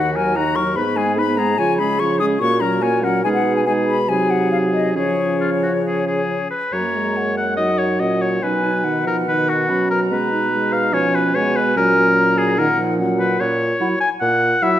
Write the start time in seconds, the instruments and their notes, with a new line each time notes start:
Already playing: bassoon D#2, french horn D#3, clarinet D#4, oboe F#4, flute F#5
0.16 french horn F#3, clarinet F#4, oboe A#4, flute G#5
0.36 french horn D#3, clarinet D#4, oboe F#4, flute A#5
0.56 french horn F#3, clarinet F#4, oboe A#4, flute C#6
0.76 bassoon G#2, french horn B3, clarinet D#4, oboe B4, flute B5
0.96 french horn G#3, clarinet B3, oboe G#4, flute G#5
1.17 french horn B3, clarinet D#4, oboe B4, flute B5
1.37 french horn G#3, clarinet B3, oboe G#4, flute A#5
1.58 bassoon C#3, french horn F3, clarinet F4, oboe C#5, flute G#5
1.78 french horn G#3, clarinet C#4, oboe G#4, flute B5
2.00 french horn F3, clarinet F4, oboe C#5, flute C#6
2.19 french horn G#3, clarinet C#4, oboe G#4, flute D#6
2.40 bassoon A#2, french horn A#3, clarinet F#4, oboe C#5, flute C#6
2.60 french horn F#3, clarinet C#4, oboe A#4, flute A#5
2.81 french horn A#3, clarinet F#4, oboe C#5, flute G#5
3.03 french horn F#3, clarinet C#4, oboe A#4, flute F#5
3.24 bassoon B2, french horn G#3, clarinet D#4, oboe G#4, flute G#5
3.34 flute F#5
3.56 flute G#5
3.66 french horn G#3, clarinet D#4, oboe G#4, flute G#5
3.87 flute B5
4.09 bassoon C3, french horn F#3, clarinet D#4, oboe G#4, flute G#5
4.30 flute F#5
4.52 flute F5
4.73 flute D#5
4.95 bassoon C#3, french horn F3, clarinet C#4, oboe G#4, flute C#5
5.41 oboe F4
5.63 oboe F#4
5.86 oboe G#4
6.07 oboe G#4
6.50 oboe B4
6.72 bassoon F#2, french horn F#3, clarinet A#3, oboe C#5, flute A#5
6.94 french horn G#3
7.16 flute F#5
7.37 oboe F#5
7.57 french horn F#3, clarinet D#4, oboe D#5, flute F#5
7.79 oboe C#5
8.00 bassoon A#2, clarinet C#4, oboe D#5
8.22 oboe C#5
8.42 bassoon B2, french horn F#3, clarinet D#4, oboe B4, flute G#5
8.64 clarinet D#4
8.84 french horn D#3, flute F#5
9.05 french horn F3, oboe A#4
9.27 french horn D#3, clarinet D#4, oboe B4
9.49 oboe F#4
9.69 french horn F#3, clarinet C#4, flute B5
9.90 oboe A#4, flute A#5
10.11 bassoon B2, french horn G#3, clarinet B3, oboe B4
10.32 clarinet D#4
10.52 french horn G#3
10.73 oboe F5
10.93 french horn F3, clarinet C#4, oboe C#5, flute G#5
11.15 oboe B4
11.35 french horn G#3, clarinet B3, oboe C#5, flute G#5
11.56 oboe B4
11.76 bassoon A#2, french horn F#3, clarinet C#4, oboe A#4
11.97 french horn F#3
12.17 flute A#5
12.38 oboe G#4
12.58 french horn D#3, clarinet D#4, oboe A#4, flute F#5
12.78 french horn F3
12.99 french horn F#3, clarinet C#4, flute F#5
13.19 oboe B4
13.40 bassoon A#2, oboe C#5
13.80 french horn F#3, clarinet E4, flute F#5
14.00 oboe G#5
14.21 bassoon A#2, oboe F#5
14.62 french horn F#3, clarinet E4, oboe E5, flute F#5